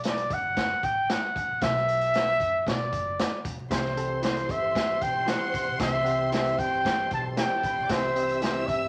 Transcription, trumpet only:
0.08 D5
0.34 F#5
0.84 G5
1.11 F#5
1.62 E5
2.68 D5
3.71 C5
4.24 C5
4.51 E5
5.02 G5
5.29 F#5
5.82 E5
6.33 E5
6.59 G5
7.14 A5
7.39 G5
7.92 C5
8.43 C5
8.67 E5

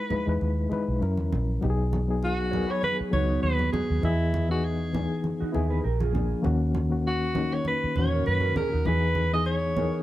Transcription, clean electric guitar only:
2.51 A#4 C#5
2.67 G#4 B4
2.98 G#4
3.12 D#4 F#4
3.29 B3 D#4
5.40 D#4 F#4
5.54 E4 G#4
5.70 G#4 B4
5.84 G4 A#4
6.00 F4 G#4
8.11 A#4 C#5
8.41 F#4 A#4
8.56 G#4
8.72 D#4 F#4
9.76 A#4 C#5

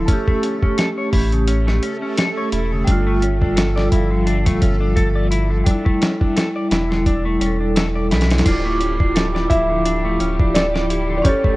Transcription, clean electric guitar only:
0.08 C#4
0.28 A3
0.43 C#4
0.63 C#4
0.78 A4
0.98 C#5
1.13 E4
1.33 C#3
1.48 C#4
1.67 A3
1.83 C#4
2.02 C#4
2.18 A4
2.37 C#5
2.52 E4
2.72 C#3
2.87 D4
3.06 A3
3.22 C#4
3.41 D4
3.56 A4
3.76 D5
3.92 E4
4.11 D3
4.26 D4
4.46 A3
4.61 C#4
4.81 D4
4.96 A4
5.16 D5
5.31 E4
5.50 D3
5.66 D4
5.85 A3
6.01 C#4
6.21 D4
6.36 A4
6.56 D5
6.71 E4
6.91 D3
7.06 D4
7.25 A3
7.41 C#4
7.61 D4
7.76 A4
7.95 D5
8.11 E4
8.31 D3
8.45 D4
8.65 A3
8.80 C#4
9.00 D4
9.15 A4
9.35 D5
9.50 E4
9.70 D3
9.86 D4
10.05 A3
10.20 C#4
10.40 D4
10.55 A4
10.74 D5
10.90 E4
11.09 D3
11.25 C#4
11.44 A3

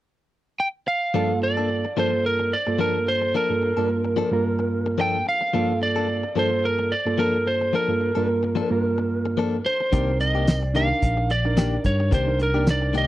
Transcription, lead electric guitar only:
0.60 G5
0.88 F5
1.43 D5
1.99 C5
2.26 A#4
2.53 D5
2.81 A#4
3.08 C5
3.37 A#4
5.01 G5
5.29 F5
5.83 D5
6.39 C5
6.65 A#4
6.92 D5
7.19 A#4
7.47 C5
7.75 A#4
9.66 C5
10.21 D#5
10.62 D5
10.76 F5
11.31 D5
11.86 C#5
12.14 C5
12.43 A#4
12.70 D5
12.98 D#5

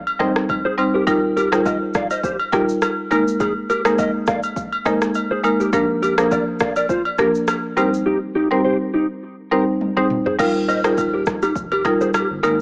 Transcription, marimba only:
0.19 G3 C4 D#4 C5
0.78 G3 C4 D#4 C5
1.07 G3 D#4 F4 A#4
1.52 G3 D#4 F4 A#4
2.52 G3 D#4 F4 A#4
3.11 G#3 A#3 D#4 A#4
3.85 G#3 A#3 D#4 A#4
4.86 G#3 A#3 D#4 A#4
5.44 G#3 A#3 D#4 A#4
5.73 F3 A#3 D4 A#4
6.18 F3 A#3 D4 A#4
7.18 F3 A#3 D4 A#4
7.77 G3 C4 D#4 C5
8.51 G3 C4 D#4 C5
9.51 G3 C4 D#4 C5
9.97 G3 C4 D#4 C5
10.39 G3 D#4 F4 A#4
10.84 G3 D#4 F4 A#4
11.85 G3 D#4 F4 A#4
12.43 G#3 A#3 D#4 A#4

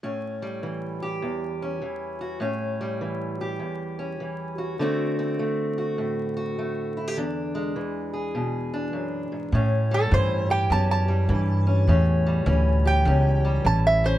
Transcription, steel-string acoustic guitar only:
0.03 A2 C#4
0.42 G3
0.63 E3
1.02 G4
1.22 E2
1.62 C#4
1.82 E3
2.21 F#4
2.40 A2 C#4
2.81 G3
3.01 E3
3.41 G4
3.60 E2
3.99 C#4
4.20 E3
4.58 F#4
4.79 D3 A3 C4 F#4
5.19 C4
5.39 A3
5.78 F#4
5.98 A2
6.37 F#4
6.59 A3
6.97 E4
7.08 G4
7.16 E2 D4
7.55 G#3
7.76 E3
8.13 G#4
8.35 B2
8.74 D4
8.93 F#2
9.32 G#2
9.54 A2 C#4
9.91 G3
10.12 E3 C#4
10.50 G4
10.70 E2 C#4
11.08 G3
11.30 E3
11.67 C#4
11.88 A2 C#4
12.26 G3
12.46 E3 C#4
12.85 G4
13.07 E2 C#4
13.45 G3
13.64 E3
14.04 C#4

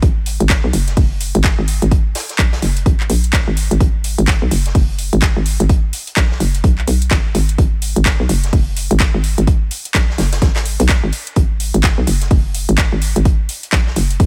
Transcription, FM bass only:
0.03 G#1
0.40 G#1
0.64 B1
0.73 F#1
0.97 F#1
1.35 G#1
1.59 G#1
1.82 G#1
2.39 A#1
2.62 F#1
2.86 G#1
3.10 A#1
3.48 G#1
3.71 G#1
3.80 G#1
4.18 G#1
4.42 B1
4.51 F#1
4.75 F#1
5.13 G#1
5.37 G#1
5.60 G#1
6.17 A#1
6.40 F#1
6.64 B1
6.88 B1
7.11 G#1
7.35 G#1
7.58 G#1
7.96 G#1
8.20 B1
8.29 F#1
8.53 F#1
8.91 G#1
9.14 G#1
9.38 G#1
9.95 A#1
10.18 F#1
10.42 G#1
10.80 B1
11.03 G#1
11.36 G#1
11.74 G#1
11.98 B1
12.07 F#1
12.31 F#1
12.69 G#1
12.92 G#1
13.16 G#1
13.73 A#1
13.96 F#1
14.20 B1

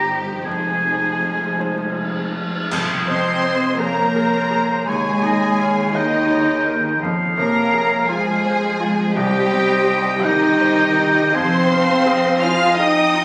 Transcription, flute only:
3.07 D#5
3.79 C#5
4.88 C#5
5.95 G#4
7.39 C#5
8.11 C5
9.17 C5
10.24 G4
11.33 F5
12.42 G#5
12.79 G5

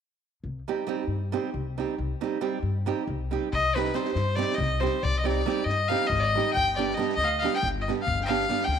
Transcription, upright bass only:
0.44 C2
1.07 G2
1.54 C2
1.98 C2
2.63 G2
3.07 C2
3.53 C2
4.15 G2
4.58 C2
5.03 C2
5.65 G2
6.10 G#1
6.54 G1
7.17 D2
7.63 G1
8.07 G1
8.67 D2

